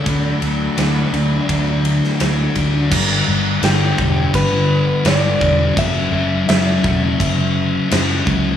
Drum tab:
CC |----------------|x---x---x---x---|x---x---x---x---|
RD |x-x-x-x-x-x-x-x-|----------------|----------------|
SD |----o------oo---|----o-------o---|----o-------o---|
BD |o-------o-----o-|o-----o-o-----o-|o-----o-o-----o-|